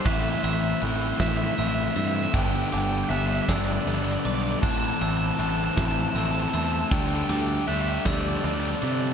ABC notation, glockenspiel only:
X:1
M:6/8
L:1/8
Q:3/8=52
K:Ador
V:1 name="Glockenspiel"
f' e' f'2 e' e'- | e' d' f' e'2 d' | f' e' f'2 e' e'- | e' d' f' e'2 d' |]